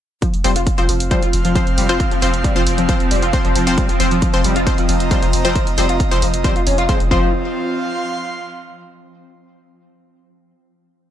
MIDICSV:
0, 0, Header, 1, 7, 480
1, 0, Start_track
1, 0, Tempo, 444444
1, 240, Time_signature, 4, 2, 24, 8
1, 11993, End_track
2, 0, Start_track
2, 0, Title_t, "Analog synth pad"
2, 0, Program_c, 0, 89
2, 239, Note_on_c, 0, 60, 84
2, 583, Note_on_c, 0, 65, 81
2, 832, Note_on_c, 0, 77, 92
2, 854, Note_on_c, 0, 84, 72
2, 4363, Note_on_c, 0, 75, 96
2, 4507, Note_off_c, 0, 77, 0
2, 4915, Note_on_c, 0, 82, 71
2, 5055, Note_off_c, 0, 84, 0
2, 7666, Note_off_c, 0, 60, 0
2, 7679, Note_off_c, 0, 65, 0
2, 7679, Note_on_c, 0, 60, 84
2, 7680, Note_off_c, 0, 75, 0
2, 7680, Note_off_c, 0, 82, 0
2, 7753, Note_on_c, 0, 65, 85
2, 8068, Note_on_c, 0, 77, 86
2, 8137, Note_on_c, 0, 84, 82
2, 9556, Note_off_c, 0, 60, 0
2, 9556, Note_off_c, 0, 65, 0
2, 9797, Note_off_c, 0, 77, 0
2, 9797, Note_off_c, 0, 84, 0
2, 11993, End_track
3, 0, Start_track
3, 0, Title_t, "Supersaw synth"
3, 0, Program_c, 1, 81
3, 479, Note_on_c, 1, 72, 100
3, 480, Note_on_c, 1, 53, 90
3, 480, Note_on_c, 1, 60, 82
3, 551, Note_off_c, 1, 53, 0
3, 551, Note_off_c, 1, 60, 0
3, 551, Note_off_c, 1, 72, 0
3, 843, Note_on_c, 1, 53, 101
3, 843, Note_on_c, 1, 60, 91
3, 843, Note_on_c, 1, 72, 108
3, 911, Note_off_c, 1, 53, 0
3, 911, Note_off_c, 1, 60, 0
3, 911, Note_off_c, 1, 72, 0
3, 1199, Note_on_c, 1, 60, 75
3, 1200, Note_on_c, 1, 53, 83
3, 1200, Note_on_c, 1, 72, 88
3, 1314, Note_off_c, 1, 53, 0
3, 1314, Note_off_c, 1, 60, 0
3, 1314, Note_off_c, 1, 72, 0
3, 1680, Note_on_c, 1, 53, 75
3, 1680, Note_on_c, 1, 60, 72
3, 1680, Note_on_c, 1, 72, 85
3, 2014, Note_off_c, 1, 53, 0
3, 2014, Note_off_c, 1, 60, 0
3, 2014, Note_off_c, 1, 72, 0
3, 2044, Note_on_c, 1, 53, 94
3, 2044, Note_on_c, 1, 60, 83
3, 2044, Note_on_c, 1, 72, 101
3, 2152, Note_off_c, 1, 53, 0
3, 2152, Note_off_c, 1, 60, 0
3, 2152, Note_off_c, 1, 72, 0
3, 2400, Note_on_c, 1, 53, 90
3, 2400, Note_on_c, 1, 60, 83
3, 2400, Note_on_c, 1, 72, 97
3, 2472, Note_off_c, 1, 53, 0
3, 2472, Note_off_c, 1, 60, 0
3, 2472, Note_off_c, 1, 72, 0
3, 2763, Note_on_c, 1, 53, 101
3, 2763, Note_on_c, 1, 72, 110
3, 2764, Note_on_c, 1, 60, 88
3, 2831, Note_off_c, 1, 53, 0
3, 2831, Note_off_c, 1, 60, 0
3, 2831, Note_off_c, 1, 72, 0
3, 3120, Note_on_c, 1, 53, 82
3, 3120, Note_on_c, 1, 60, 75
3, 3120, Note_on_c, 1, 72, 91
3, 3234, Note_off_c, 1, 53, 0
3, 3234, Note_off_c, 1, 60, 0
3, 3234, Note_off_c, 1, 72, 0
3, 3600, Note_on_c, 1, 53, 76
3, 3600, Note_on_c, 1, 60, 71
3, 3600, Note_on_c, 1, 72, 84
3, 3934, Note_off_c, 1, 53, 0
3, 3934, Note_off_c, 1, 60, 0
3, 3934, Note_off_c, 1, 72, 0
3, 3963, Note_on_c, 1, 53, 91
3, 3963, Note_on_c, 1, 60, 84
3, 3963, Note_on_c, 1, 72, 104
3, 4071, Note_off_c, 1, 53, 0
3, 4071, Note_off_c, 1, 60, 0
3, 4071, Note_off_c, 1, 72, 0
3, 4320, Note_on_c, 1, 53, 87
3, 4320, Note_on_c, 1, 60, 82
3, 4320, Note_on_c, 1, 72, 99
3, 4391, Note_off_c, 1, 53, 0
3, 4391, Note_off_c, 1, 60, 0
3, 4391, Note_off_c, 1, 72, 0
3, 4683, Note_on_c, 1, 53, 100
3, 4683, Note_on_c, 1, 60, 89
3, 4683, Note_on_c, 1, 72, 110
3, 4751, Note_off_c, 1, 53, 0
3, 4751, Note_off_c, 1, 60, 0
3, 4751, Note_off_c, 1, 72, 0
3, 5039, Note_on_c, 1, 53, 80
3, 5039, Note_on_c, 1, 72, 89
3, 5040, Note_on_c, 1, 60, 75
3, 5154, Note_off_c, 1, 53, 0
3, 5154, Note_off_c, 1, 60, 0
3, 5154, Note_off_c, 1, 72, 0
3, 5519, Note_on_c, 1, 53, 79
3, 5519, Note_on_c, 1, 72, 84
3, 5520, Note_on_c, 1, 60, 72
3, 5853, Note_off_c, 1, 53, 0
3, 5853, Note_off_c, 1, 72, 0
3, 5854, Note_off_c, 1, 60, 0
3, 5883, Note_on_c, 1, 53, 94
3, 5883, Note_on_c, 1, 60, 85
3, 5883, Note_on_c, 1, 72, 102
3, 5991, Note_off_c, 1, 53, 0
3, 5991, Note_off_c, 1, 60, 0
3, 5991, Note_off_c, 1, 72, 0
3, 6240, Note_on_c, 1, 53, 89
3, 6240, Note_on_c, 1, 60, 80
3, 6240, Note_on_c, 1, 72, 101
3, 6312, Note_off_c, 1, 53, 0
3, 6312, Note_off_c, 1, 60, 0
3, 6312, Note_off_c, 1, 72, 0
3, 6603, Note_on_c, 1, 72, 114
3, 6604, Note_on_c, 1, 53, 101
3, 6604, Note_on_c, 1, 60, 93
3, 6671, Note_off_c, 1, 53, 0
3, 6671, Note_off_c, 1, 60, 0
3, 6671, Note_off_c, 1, 72, 0
3, 6960, Note_on_c, 1, 53, 80
3, 6960, Note_on_c, 1, 72, 90
3, 6961, Note_on_c, 1, 60, 77
3, 7075, Note_off_c, 1, 53, 0
3, 7075, Note_off_c, 1, 60, 0
3, 7075, Note_off_c, 1, 72, 0
3, 7440, Note_on_c, 1, 53, 79
3, 7440, Note_on_c, 1, 60, 71
3, 7440, Note_on_c, 1, 72, 85
3, 7555, Note_off_c, 1, 53, 0
3, 7555, Note_off_c, 1, 60, 0
3, 7555, Note_off_c, 1, 72, 0
3, 7680, Note_on_c, 1, 53, 88
3, 7681, Note_on_c, 1, 60, 82
3, 7681, Note_on_c, 1, 72, 92
3, 7860, Note_off_c, 1, 53, 0
3, 7860, Note_off_c, 1, 60, 0
3, 7860, Note_off_c, 1, 72, 0
3, 11993, End_track
4, 0, Start_track
4, 0, Title_t, "Synth drone"
4, 0, Program_c, 2, 95
4, 239, Note_on_c, 2, 60, 79
4, 240, Note_on_c, 2, 53, 79
4, 7969, Note_off_c, 2, 53, 0
4, 7969, Note_off_c, 2, 60, 0
4, 11993, End_track
5, 0, Start_track
5, 0, Title_t, "Analog synth lead"
5, 0, Program_c, 3, 81
5, 239, Note_on_c, 3, 53, 85
5, 279, Note_off_c, 3, 53, 0
5, 480, Note_on_c, 3, 55, 76
5, 545, Note_off_c, 3, 55, 0
5, 603, Note_on_c, 3, 65, 76
5, 640, Note_off_c, 3, 65, 0
5, 842, Note_on_c, 3, 53, 97
5, 880, Note_off_c, 3, 53, 0
5, 959, Note_on_c, 3, 53, 77
5, 999, Note_off_c, 3, 53, 0
5, 1199, Note_on_c, 3, 55, 82
5, 1264, Note_off_c, 3, 55, 0
5, 1323, Note_on_c, 3, 65, 75
5, 1360, Note_off_c, 3, 65, 0
5, 1563, Note_on_c, 3, 53, 99
5, 1600, Note_off_c, 3, 53, 0
5, 1680, Note_on_c, 3, 53, 80
5, 1719, Note_off_c, 3, 53, 0
5, 1919, Note_on_c, 3, 55, 80
5, 1985, Note_off_c, 3, 55, 0
5, 2044, Note_on_c, 3, 65, 74
5, 2080, Note_off_c, 3, 65, 0
5, 2284, Note_on_c, 3, 53, 97
5, 2320, Note_off_c, 3, 53, 0
5, 2400, Note_on_c, 3, 53, 78
5, 2439, Note_off_c, 3, 53, 0
5, 2640, Note_on_c, 3, 55, 81
5, 2705, Note_off_c, 3, 55, 0
5, 2763, Note_on_c, 3, 65, 73
5, 2800, Note_off_c, 3, 65, 0
5, 3003, Note_on_c, 3, 53, 104
5, 3040, Note_off_c, 3, 53, 0
5, 3120, Note_on_c, 3, 53, 80
5, 3159, Note_off_c, 3, 53, 0
5, 3360, Note_on_c, 3, 55, 74
5, 3425, Note_off_c, 3, 55, 0
5, 3484, Note_on_c, 3, 65, 78
5, 3520, Note_off_c, 3, 65, 0
5, 3724, Note_on_c, 3, 53, 100
5, 3761, Note_off_c, 3, 53, 0
5, 3840, Note_on_c, 3, 53, 81
5, 3879, Note_off_c, 3, 53, 0
5, 4080, Note_on_c, 3, 55, 82
5, 4145, Note_off_c, 3, 55, 0
5, 4203, Note_on_c, 3, 65, 76
5, 4240, Note_off_c, 3, 65, 0
5, 4444, Note_on_c, 3, 53, 102
5, 4480, Note_off_c, 3, 53, 0
5, 4561, Note_on_c, 3, 53, 83
5, 4599, Note_off_c, 3, 53, 0
5, 4801, Note_on_c, 3, 55, 77
5, 4865, Note_off_c, 3, 55, 0
5, 4923, Note_on_c, 3, 65, 78
5, 4960, Note_off_c, 3, 65, 0
5, 5164, Note_on_c, 3, 53, 103
5, 5200, Note_off_c, 3, 53, 0
5, 5280, Note_on_c, 3, 53, 75
5, 5319, Note_off_c, 3, 53, 0
5, 5521, Note_on_c, 3, 55, 80
5, 5585, Note_off_c, 3, 55, 0
5, 5645, Note_on_c, 3, 65, 73
5, 5681, Note_off_c, 3, 65, 0
5, 5885, Note_on_c, 3, 53, 103
5, 5921, Note_off_c, 3, 53, 0
5, 6000, Note_on_c, 3, 53, 86
5, 6039, Note_off_c, 3, 53, 0
5, 6240, Note_on_c, 3, 55, 79
5, 6305, Note_off_c, 3, 55, 0
5, 6364, Note_on_c, 3, 65, 77
5, 6400, Note_off_c, 3, 65, 0
5, 6604, Note_on_c, 3, 53, 97
5, 6640, Note_off_c, 3, 53, 0
5, 6720, Note_on_c, 3, 53, 76
5, 6759, Note_off_c, 3, 53, 0
5, 6960, Note_on_c, 3, 55, 80
5, 7025, Note_off_c, 3, 55, 0
5, 7084, Note_on_c, 3, 65, 76
5, 7121, Note_off_c, 3, 65, 0
5, 7201, Note_on_c, 3, 61, 76
5, 7298, Note_off_c, 3, 61, 0
5, 7324, Note_on_c, 3, 65, 103
5, 7385, Note_off_c, 3, 65, 0
5, 7442, Note_on_c, 3, 56, 84
5, 7539, Note_off_c, 3, 56, 0
5, 7681, Note_on_c, 3, 53, 96
5, 7904, Note_off_c, 3, 53, 0
5, 11993, End_track
6, 0, Start_track
6, 0, Title_t, "Sub bass"
6, 0, Program_c, 4, 38
6, 363, Note_on_c, 4, 29, 74
6, 473, Note_off_c, 4, 29, 0
6, 480, Note_on_c, 4, 29, 99
6, 597, Note_off_c, 4, 29, 0
6, 604, Note_on_c, 4, 29, 77
6, 717, Note_off_c, 4, 29, 0
6, 843, Note_on_c, 4, 29, 77
6, 953, Note_off_c, 4, 29, 0
6, 960, Note_on_c, 4, 29, 98
6, 1077, Note_off_c, 4, 29, 0
6, 1083, Note_on_c, 4, 29, 82
6, 1197, Note_off_c, 4, 29, 0
6, 1323, Note_on_c, 4, 29, 78
6, 1434, Note_off_c, 4, 29, 0
6, 1440, Note_on_c, 4, 29, 92
6, 1557, Note_off_c, 4, 29, 0
6, 1564, Note_on_c, 4, 29, 81
6, 1678, Note_off_c, 4, 29, 0
6, 1804, Note_on_c, 4, 29, 73
6, 1913, Note_off_c, 4, 29, 0
6, 1920, Note_on_c, 4, 29, 98
6, 2037, Note_off_c, 4, 29, 0
6, 2044, Note_on_c, 4, 29, 77
6, 2158, Note_off_c, 4, 29, 0
6, 2284, Note_on_c, 4, 29, 77
6, 2393, Note_off_c, 4, 29, 0
6, 2400, Note_on_c, 4, 29, 102
6, 2517, Note_off_c, 4, 29, 0
6, 2523, Note_on_c, 4, 29, 78
6, 2637, Note_off_c, 4, 29, 0
6, 2763, Note_on_c, 4, 29, 73
6, 2873, Note_off_c, 4, 29, 0
6, 2879, Note_on_c, 4, 29, 97
6, 2996, Note_off_c, 4, 29, 0
6, 3003, Note_on_c, 4, 29, 84
6, 3117, Note_off_c, 4, 29, 0
6, 3243, Note_on_c, 4, 29, 77
6, 3353, Note_off_c, 4, 29, 0
6, 3359, Note_on_c, 4, 29, 98
6, 3476, Note_off_c, 4, 29, 0
6, 3482, Note_on_c, 4, 29, 79
6, 3597, Note_off_c, 4, 29, 0
6, 3722, Note_on_c, 4, 29, 74
6, 3832, Note_off_c, 4, 29, 0
6, 3839, Note_on_c, 4, 29, 100
6, 3956, Note_off_c, 4, 29, 0
6, 3963, Note_on_c, 4, 29, 79
6, 4077, Note_off_c, 4, 29, 0
6, 4203, Note_on_c, 4, 29, 74
6, 4312, Note_off_c, 4, 29, 0
6, 4319, Note_on_c, 4, 29, 99
6, 4436, Note_off_c, 4, 29, 0
6, 4442, Note_on_c, 4, 29, 78
6, 4557, Note_off_c, 4, 29, 0
6, 4683, Note_on_c, 4, 29, 76
6, 4793, Note_off_c, 4, 29, 0
6, 4799, Note_on_c, 4, 29, 97
6, 4917, Note_off_c, 4, 29, 0
6, 4923, Note_on_c, 4, 29, 80
6, 5037, Note_off_c, 4, 29, 0
6, 5164, Note_on_c, 4, 29, 75
6, 5274, Note_off_c, 4, 29, 0
6, 5280, Note_on_c, 4, 29, 98
6, 5398, Note_off_c, 4, 29, 0
6, 5404, Note_on_c, 4, 29, 79
6, 5518, Note_off_c, 4, 29, 0
6, 5643, Note_on_c, 4, 29, 77
6, 5754, Note_off_c, 4, 29, 0
6, 5760, Note_on_c, 4, 29, 99
6, 5878, Note_off_c, 4, 29, 0
6, 5884, Note_on_c, 4, 29, 79
6, 5998, Note_off_c, 4, 29, 0
6, 6125, Note_on_c, 4, 29, 77
6, 6234, Note_off_c, 4, 29, 0
6, 6240, Note_on_c, 4, 29, 98
6, 6358, Note_off_c, 4, 29, 0
6, 6364, Note_on_c, 4, 29, 81
6, 6478, Note_off_c, 4, 29, 0
6, 6604, Note_on_c, 4, 29, 77
6, 6714, Note_off_c, 4, 29, 0
6, 6720, Note_on_c, 4, 29, 102
6, 6837, Note_off_c, 4, 29, 0
6, 6843, Note_on_c, 4, 29, 85
6, 6957, Note_off_c, 4, 29, 0
6, 7084, Note_on_c, 4, 29, 76
6, 7193, Note_off_c, 4, 29, 0
6, 7200, Note_on_c, 4, 29, 97
6, 7317, Note_off_c, 4, 29, 0
6, 7323, Note_on_c, 4, 29, 80
6, 7437, Note_off_c, 4, 29, 0
6, 7564, Note_on_c, 4, 29, 74
6, 7674, Note_off_c, 4, 29, 0
6, 7680, Note_on_c, 4, 29, 99
6, 7903, Note_off_c, 4, 29, 0
6, 11993, End_track
7, 0, Start_track
7, 0, Title_t, "Drums"
7, 239, Note_on_c, 9, 36, 111
7, 239, Note_on_c, 9, 42, 91
7, 347, Note_off_c, 9, 36, 0
7, 347, Note_off_c, 9, 42, 0
7, 363, Note_on_c, 9, 42, 54
7, 471, Note_off_c, 9, 42, 0
7, 479, Note_on_c, 9, 46, 103
7, 587, Note_off_c, 9, 46, 0
7, 603, Note_on_c, 9, 42, 55
7, 711, Note_off_c, 9, 42, 0
7, 719, Note_on_c, 9, 36, 114
7, 719, Note_on_c, 9, 42, 94
7, 827, Note_off_c, 9, 36, 0
7, 827, Note_off_c, 9, 42, 0
7, 843, Note_on_c, 9, 42, 56
7, 951, Note_off_c, 9, 42, 0
7, 959, Note_on_c, 9, 46, 98
7, 1067, Note_off_c, 9, 46, 0
7, 1083, Note_on_c, 9, 42, 55
7, 1191, Note_off_c, 9, 42, 0
7, 1200, Note_on_c, 9, 36, 117
7, 1200, Note_on_c, 9, 42, 92
7, 1308, Note_off_c, 9, 36, 0
7, 1308, Note_off_c, 9, 42, 0
7, 1323, Note_on_c, 9, 42, 55
7, 1431, Note_off_c, 9, 42, 0
7, 1440, Note_on_c, 9, 46, 98
7, 1548, Note_off_c, 9, 46, 0
7, 1564, Note_on_c, 9, 42, 55
7, 1672, Note_off_c, 9, 42, 0
7, 1680, Note_on_c, 9, 36, 114
7, 1680, Note_on_c, 9, 42, 96
7, 1788, Note_off_c, 9, 36, 0
7, 1788, Note_off_c, 9, 42, 0
7, 1803, Note_on_c, 9, 42, 55
7, 1911, Note_off_c, 9, 42, 0
7, 1920, Note_on_c, 9, 46, 102
7, 2028, Note_off_c, 9, 46, 0
7, 2044, Note_on_c, 9, 42, 55
7, 2152, Note_off_c, 9, 42, 0
7, 2160, Note_on_c, 9, 36, 118
7, 2160, Note_on_c, 9, 42, 91
7, 2268, Note_off_c, 9, 36, 0
7, 2268, Note_off_c, 9, 42, 0
7, 2284, Note_on_c, 9, 42, 53
7, 2392, Note_off_c, 9, 42, 0
7, 2400, Note_on_c, 9, 46, 108
7, 2508, Note_off_c, 9, 46, 0
7, 2524, Note_on_c, 9, 42, 55
7, 2632, Note_off_c, 9, 42, 0
7, 2640, Note_on_c, 9, 36, 119
7, 2640, Note_on_c, 9, 42, 96
7, 2748, Note_off_c, 9, 36, 0
7, 2748, Note_off_c, 9, 42, 0
7, 2763, Note_on_c, 9, 42, 57
7, 2871, Note_off_c, 9, 42, 0
7, 2879, Note_on_c, 9, 46, 107
7, 2987, Note_off_c, 9, 46, 0
7, 3003, Note_on_c, 9, 42, 55
7, 3111, Note_off_c, 9, 42, 0
7, 3119, Note_on_c, 9, 36, 124
7, 3119, Note_on_c, 9, 42, 93
7, 3227, Note_off_c, 9, 36, 0
7, 3227, Note_off_c, 9, 42, 0
7, 3242, Note_on_c, 9, 42, 55
7, 3350, Note_off_c, 9, 42, 0
7, 3359, Note_on_c, 9, 46, 105
7, 3467, Note_off_c, 9, 46, 0
7, 3483, Note_on_c, 9, 42, 56
7, 3591, Note_off_c, 9, 42, 0
7, 3599, Note_on_c, 9, 42, 94
7, 3600, Note_on_c, 9, 36, 120
7, 3707, Note_off_c, 9, 42, 0
7, 3708, Note_off_c, 9, 36, 0
7, 3723, Note_on_c, 9, 42, 55
7, 3831, Note_off_c, 9, 42, 0
7, 3839, Note_on_c, 9, 46, 110
7, 3947, Note_off_c, 9, 46, 0
7, 3963, Note_on_c, 9, 42, 54
7, 4071, Note_off_c, 9, 42, 0
7, 4079, Note_on_c, 9, 36, 123
7, 4079, Note_on_c, 9, 42, 90
7, 4187, Note_off_c, 9, 36, 0
7, 4187, Note_off_c, 9, 42, 0
7, 4203, Note_on_c, 9, 42, 53
7, 4311, Note_off_c, 9, 42, 0
7, 4319, Note_on_c, 9, 46, 114
7, 4427, Note_off_c, 9, 46, 0
7, 4443, Note_on_c, 9, 42, 54
7, 4551, Note_off_c, 9, 42, 0
7, 4559, Note_on_c, 9, 42, 94
7, 4560, Note_on_c, 9, 36, 119
7, 4667, Note_off_c, 9, 42, 0
7, 4668, Note_off_c, 9, 36, 0
7, 4683, Note_on_c, 9, 42, 55
7, 4791, Note_off_c, 9, 42, 0
7, 4799, Note_on_c, 9, 46, 107
7, 4907, Note_off_c, 9, 46, 0
7, 4923, Note_on_c, 9, 42, 54
7, 5031, Note_off_c, 9, 42, 0
7, 5040, Note_on_c, 9, 36, 127
7, 5040, Note_on_c, 9, 42, 96
7, 5148, Note_off_c, 9, 36, 0
7, 5148, Note_off_c, 9, 42, 0
7, 5164, Note_on_c, 9, 42, 54
7, 5272, Note_off_c, 9, 42, 0
7, 5279, Note_on_c, 9, 46, 108
7, 5387, Note_off_c, 9, 46, 0
7, 5403, Note_on_c, 9, 42, 55
7, 5511, Note_off_c, 9, 42, 0
7, 5519, Note_on_c, 9, 42, 95
7, 5520, Note_on_c, 9, 36, 121
7, 5627, Note_off_c, 9, 42, 0
7, 5628, Note_off_c, 9, 36, 0
7, 5643, Note_on_c, 9, 42, 54
7, 5751, Note_off_c, 9, 42, 0
7, 5759, Note_on_c, 9, 46, 109
7, 5867, Note_off_c, 9, 46, 0
7, 5883, Note_on_c, 9, 42, 54
7, 5991, Note_off_c, 9, 42, 0
7, 6000, Note_on_c, 9, 36, 119
7, 6000, Note_on_c, 9, 42, 91
7, 6108, Note_off_c, 9, 36, 0
7, 6108, Note_off_c, 9, 42, 0
7, 6123, Note_on_c, 9, 42, 51
7, 6231, Note_off_c, 9, 42, 0
7, 6240, Note_on_c, 9, 46, 111
7, 6348, Note_off_c, 9, 46, 0
7, 6363, Note_on_c, 9, 42, 51
7, 6471, Note_off_c, 9, 42, 0
7, 6480, Note_on_c, 9, 36, 117
7, 6480, Note_on_c, 9, 42, 90
7, 6588, Note_off_c, 9, 36, 0
7, 6588, Note_off_c, 9, 42, 0
7, 6604, Note_on_c, 9, 42, 54
7, 6712, Note_off_c, 9, 42, 0
7, 6720, Note_on_c, 9, 46, 107
7, 6828, Note_off_c, 9, 46, 0
7, 6844, Note_on_c, 9, 42, 53
7, 6952, Note_off_c, 9, 42, 0
7, 6960, Note_on_c, 9, 36, 125
7, 6960, Note_on_c, 9, 42, 90
7, 7068, Note_off_c, 9, 36, 0
7, 7068, Note_off_c, 9, 42, 0
7, 7083, Note_on_c, 9, 42, 52
7, 7191, Note_off_c, 9, 42, 0
7, 7200, Note_on_c, 9, 46, 107
7, 7308, Note_off_c, 9, 46, 0
7, 7324, Note_on_c, 9, 42, 54
7, 7432, Note_off_c, 9, 42, 0
7, 7440, Note_on_c, 9, 36, 124
7, 7440, Note_on_c, 9, 42, 89
7, 7548, Note_off_c, 9, 36, 0
7, 7548, Note_off_c, 9, 42, 0
7, 7563, Note_on_c, 9, 42, 52
7, 7671, Note_off_c, 9, 42, 0
7, 7680, Note_on_c, 9, 36, 117
7, 7788, Note_off_c, 9, 36, 0
7, 11993, End_track
0, 0, End_of_file